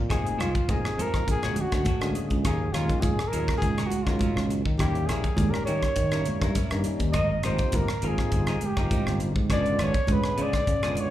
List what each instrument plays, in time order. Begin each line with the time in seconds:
0.10 fretless electric bass F1, tonewheel organ C3 F3 A#3 D#4 G#4, clean electric guitar G#3 D#4 G4 C5, muted trumpet G#4, kick, cross-stick, closed hi-hat
0.25 muted clean electric guitar stroke, closed hi-hat
0.38 fretless electric bass C2, clean electric guitar G#3 D#4 G4 C5, muted trumpet F4, cross-stick, closed hi-hat, muted conga
0.55 muted clean electric guitar stroke, muted fretless electric bass stroke, kick, closed hi-hat
0.68 fretless electric bass F1, tonewheel organ C3 F3 A#3 D#4 G#4, muted trumpet G#4, kick, closed hi-hat, high conga
0.85 muted fretless electric bass stroke, muted clean electric guitar stroke, cross-stick
0.98 fretless electric bass F2, clean electric guitar G#3 D#4 G4 C5, muted trumpet A#4, closed hi-hat
1.14 muted fretless electric bass stroke, muted clean electric guitar stroke, kick, cross-stick, closed hi-hat
1.27 fretless electric bass A#1, muted trumpet G#4, muted clean electric guitar stroke, kick, closed hi-hat, muted conga
1.43 tonewheel organ D3 G#3 A#3 C#4 F#4, clean electric guitar G#3 D4 F#4 C#5, cross-stick, closed hi-hat
1.56 muted clean electric guitar stroke, closed hi-hat, high conga, low conga
1.61 muted trumpet F#4
1.72 fretless electric bass D2, clean electric guitar D4 F#4 C#5, muted trumpet F#4, kick, cross-stick, closed hi-hat
1.85 clean electric guitar G#3 D4 F#4 C#5, kick, closed hi-hat, high conga
2.01 fretless electric bass D2, tonewheel organ D3 G#3 A#3 C#4 G#4, muted clean electric guitar stroke, cross-stick, closed hi-hat
2.15 muted clean electric guitar stroke, closed hi-hat, muted conga
2.30 fretless electric bass C#2, kick, closed hi-hat
2.45 fretless electric bass D#2, clean electric guitar F#3 C#4 F4 A#4, muted trumpet G#4, kick, cross-stick, closed hi-hat
2.61 muted clean electric guitar stroke
2.73 fretless electric bass D#2, tonewheel organ A#2 D#3 G#3 C#4 F4, clean electric guitar F#3 C#4 F4 A#4, muted trumpet F4, cross-stick, closed hi-hat, muted conga
2.89 muted clean electric guitar stroke, kick, closed hi-hat
3.01 fretless electric bass C#2, muted trumpet G#4, kick, closed hi-hat, high conga
3.19 muted clean electric guitar stroke, muted fretless electric bass stroke, cross-stick
3.28 muted trumpet A#4
3.32 fretless electric bass D#2, tonewheel organ A#2 D#3 G#3 C#4 F4, clean electric guitar F#3 C#4 F4 A#4, closed hi-hat
3.48 muted clean electric guitar stroke, kick, cross-stick
3.58 fretless electric bass C#2, muted trumpet G#4, muted conga
3.62 muted clean electric guitar stroke, kick, closed hi-hat
3.78 clean electric guitar F#3 C#4 F4 A#4, cross-stick, closed hi-hat
3.87 muted trumpet F#4, high conga
3.91 muted fretless electric bass stroke, muted clean electric guitar stroke, closed hi-hat
4.03 fretless electric bass C#2, tonewheel organ A#2 D#3 G#3, muted trumpet F4, clean electric guitar A#4, kick, cross-stick
4.07 tonewheel organ F#3 C#4, clean electric guitar C#4 F4
4.19 clean electric guitar F#3 C#4 F4 A#4, muted fretless electric bass stroke, kick, closed hi-hat, high conga
4.36 fretless electric bass C#2, muted clean electric guitar stroke, cross-stick
4.50 muted clean electric guitar stroke, closed hi-hat, muted conga
4.66 fretless electric bass D#3, kick
4.78 fretless electric bass D#2, tonewheel organ D#3 G3 A#3 C#4 E4, clean electric guitar G3 C#4 E4 A#4, muted trumpet G4, kick, cross-stick, closed hi-hat, muted conga
4.95 muted clean electric guitar stroke, closed hi-hat
5.06 fretless electric bass A#1, clean electric guitar G3 C#4 E4 A#4, muted trumpet G#4, cross-stick, closed hi-hat, muted conga
5.24 muted fretless electric bass stroke, muted clean electric guitar stroke, kick, closed hi-hat
5.37 fretless electric bass D#2, tonewheel organ D#3 G3 A#3 C#4 G4, kick, closed hi-hat, high conga
5.51 muted trumpet A#4, muted clean electric guitar stroke, cross-stick
5.55 muted fretless electric bass stroke
5.66 fretless electric bass D#3, clean electric guitar G3 C#4 E4 A#4, muted trumpet C#5, closed hi-hat
5.82 muted fretless electric bass stroke, muted clean electric guitar stroke, kick, cross-stick, closed hi-hat
5.96 fretless electric bass D#3, muted clean electric guitar stroke, kick, closed hi-hat, muted conga
6.11 tonewheel organ D#3 G3 A#3 C#4 E4, clean electric guitar G3 C#4 E4 A#4, cross-stick, closed hi-hat
6.25 muted clean electric guitar stroke, closed hi-hat, high conga, low conga
6.42 fretless electric bass G2, clean electric guitar C#4 E4 A#4, kick, cross-stick, closed hi-hat
6.55 clean electric guitar G3 C#4 E4 A#4, kick, closed hi-hat, high conga
6.71 fretless electric bass G2, tonewheel organ D#3 G3 A#3 C#4 D#4, muted clean electric guitar stroke, cross-stick, closed hi-hat
6.84 muted clean electric guitar stroke, closed hi-hat, muted conga
7.00 fretless electric bass D#2, kick, closed hi-hat
7.12 fretless electric bass G#1, clean electric guitar G3 C4 D#4 A#4, muted trumpet D#5, kick, cross-stick, closed hi-hat, muted conga
7.32 muted clean electric guitar stroke
7.43 fretless electric bass G#1, tonewheel organ C3 F3 A#3 D#4 G4, clean electric guitar G3 C4 D#4 A#4, muted trumpet C5, cross-stick, closed hi-hat, muted conga
7.58 muted clean electric guitar stroke, kick, closed hi-hat
7.72 fretless electric bass G1, muted trumpet A#4, kick, closed hi-hat, high conga
7.88 muted fretless electric bass stroke, muted clean electric guitar stroke, cross-stick
8.02 fretless electric bass G#1, tonewheel organ C3 F3 A#3 D#4 F4, clean electric guitar G3 C4 D#4 A#4, closed hi-hat
8.07 muted trumpet G#4
8.18 muted clean electric guitar stroke, kick, cross-stick
8.32 fretless electric bass G1, muted clean electric guitar stroke, kick, closed hi-hat, muted conga
8.47 clean electric guitar G3 C4 D#4 A#4, cross-stick, closed hi-hat
8.61 muted fretless electric bass stroke, muted clean electric guitar stroke, closed hi-hat, high conga
8.66 muted trumpet G4
8.77 fretless electric bass G1, tonewheel organ C3 F3 A#3 D#4 F4, clean electric guitar C4 D#4 A#4, kick, cross-stick
8.91 clean electric guitar G3 C4 D#4 A#4, kick, closed hi-hat, high conga
9.06 fretless electric bass G1, muted clean electric guitar stroke, cross-stick
9.20 muted clean electric guitar stroke, closed hi-hat
9.36 fretless electric bass G#2, kick
9.49 fretless electric bass C#2, tonewheel organ D3 G#3 B3 C#4 F4, clean electric guitar F3 B3 D4 G#4, muted trumpet D5, kick, cross-stick, closed hi-hat
9.66 muted clean electric guitar stroke, closed hi-hat
9.79 fretless electric bass G#1, clean electric guitar F3 B3 D4 G#4, cross-stick, closed hi-hat, muted conga
9.83 muted trumpet C#5
9.94 muted fretless electric bass stroke, muted clean electric guitar stroke, kick, closed hi-hat
10.07 fretless electric bass C#2, tonewheel organ D3 G#3 B3 C#4 G#4, kick, closed hi-hat, high conga
10.13 muted trumpet B4
10.24 muted fretless electric bass stroke, muted clean electric guitar stroke, cross-stick
10.37 fretless electric bass C#3, clean electric guitar F3 B3 D4 G#4, closed hi-hat
10.42 muted trumpet D5
10.53 muted fretless electric bass stroke, muted clean electric guitar stroke, kick, cross-stick, closed hi-hat
10.66 fretless electric bass C#3, muted clean electric guitar stroke, kick, closed hi-hat, muted conga
10.83 tonewheel organ D3 G#3 B3 C#4 F4, clean electric guitar F3 B3 D4 G#4, cross-stick, closed hi-hat
10.95 muted clean electric guitar stroke, closed hi-hat, high conga, low conga
11.01 muted trumpet C#5